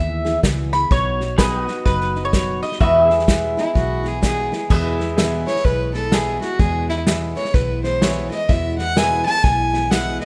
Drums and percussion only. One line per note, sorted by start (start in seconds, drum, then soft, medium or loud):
0.25 snare soft
0.43 kick medium
0.43 snare loud
0.43 hi-hat pedal medium
0.73 snare soft
0.91 kick loud
0.91 snare soft
1.20 snare soft
1.38 kick medium
1.38 snare loud
1.38 hi-hat pedal medium
1.68 snare soft
1.86 kick medium
1.86 snare soft
2.01 snare soft
2.15 snare soft
2.33 kick medium
2.33 snare loud
2.33 hi-hat pedal medium
2.63 snare soft
2.72 snare soft
2.81 kick loud
2.81 snare soft
3.10 snare soft
3.19 snare soft
3.28 kick medium
3.28 snare loud
3.28 hi-hat pedal medium
3.58 snare soft
3.75 kick loud
3.75 snare soft
4.05 snare soft
4.23 kick medium
4.23 snare medium
4.23 hi-hat pedal medium
4.52 snare soft
4.70 kick loud
4.70 snare soft
4.70 crash loud
5.00 snare soft
5.18 snare loud
5.18 hi-hat pedal medium
5.47 snare soft
5.56 snare soft
5.65 kick loud
5.65 snare soft
5.94 snare soft
6.12 snare loud
6.12 hi-hat pedal medium
6.41 snare soft
6.59 kick loud
6.59 snare soft
6.89 snare soft
7.07 snare loud
7.07 hi-hat pedal medium
7.36 snare soft
7.45 snare soft
7.54 kick loud
7.54 snare soft
7.84 snare soft
8.02 snare loud
8.02 hi-hat pedal medium
8.31 snare soft
8.49 kick loud
8.49 snare soft
8.79 snare soft
8.97 snare loud
8.97 hi-hat pedal medium
9.26 snare soft
9.35 snare soft
9.44 kick loud
9.44 snare soft
9.74 snare soft
9.91 snare loud
9.91 hi-hat pedal medium
10.21 snare soft